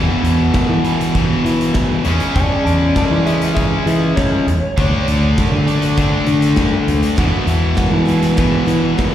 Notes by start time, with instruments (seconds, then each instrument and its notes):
Already playing: distorted electric guitar E2 B2 E3
0.23 picked electric bass E2, closed hi-hat
0.54 kick, snare, closed hi-hat
0.69 picked electric bass E3
0.83 distorted electric guitar E2 B2 E3, closed hi-hat
1.01 closed hi-hat
1.14 distorted electric guitar E2 B2 E3, kick, closed hi-hat
1.45 picked electric bass E3, closed hi-hat
1.61 closed hi-hat
1.74 kick, snare, closed hi-hat
2.04 picked electric bass E2, distorted electric guitar C#3 G#3 C#4, closed hi-hat
2.20 closed hi-hat
2.36 picked electric bass E2, electric slide guitar D5 A5, kick, closed hi-hat
2.65 picked electric bass E2, electric slide guitar D5 A5, closed hi-hat
2.95 distorted electric guitar C#3 G#3 C#4, electric slide guitar D5 A5, kick, snare, closed hi-hat
3.11 picked electric bass E3
3.26 distorted electric guitar C#3 G#3 C#4, electric slide guitar G#4 E5, closed hi-hat
3.41 closed hi-hat
3.54 electric slide guitar G#4 E5, kick, closed hi-hat
3.86 picked electric bass E3, electric slide guitar G#4 E5, closed hi-hat
4.16 electric slide guitar C#5, kick, snare, closed hi-hat
4.47 picked electric bass E2, closed hi-hat
4.77 picked electric bass D2, distorted electric guitar D3 A3 D4, kick, closed hi-hat
5.07 picked electric bass D2, closed hi-hat
5.38 kick, snare, closed hi-hat
5.52 picked electric bass D3
5.67 distorted electric guitar D3 A3 D4, closed hi-hat
5.82 closed hi-hat
5.97 distorted electric guitar D3 A3 D4, kick, closed hi-hat
6.26 picked electric bass D3, closed hi-hat
6.42 closed hi-hat
6.56 kick, snare, closed hi-hat
6.88 picked electric bass D2, closed hi-hat
7.02 closed hi-hat
7.16 steel-string acoustic guitar E2 B2 E3 G#3 B3 E4, distorted electric guitar E2 B2 E3, picked electric bass E2, kick, closed hi-hat
7.46 picked electric bass E2, steel-string acoustic guitar E3 G#3 B3 E4, closed hi-hat
7.75 steel-string acoustic guitar E3 G#3 B3 E4, kick, snare, closed hi-hat
7.91 picked electric bass E3
8.06 steel-string acoustic guitar E3 G#3 B3 E4, distorted electric guitar E3, closed hi-hat
8.10 distorted electric guitar E2 B2
8.22 snare, closed hi-hat
8.37 steel-string acoustic guitar E2 B2 E3 G#3 B3 E4, distorted electric guitar E2 B2 E3, kick, closed hi-hat
8.66 picked electric bass E3, steel-string acoustic guitar E3 G#3 B3 E4, closed hi-hat
8.98 steel-string acoustic guitar E3 G#3 B3 E4, kick, snare, closed hi-hat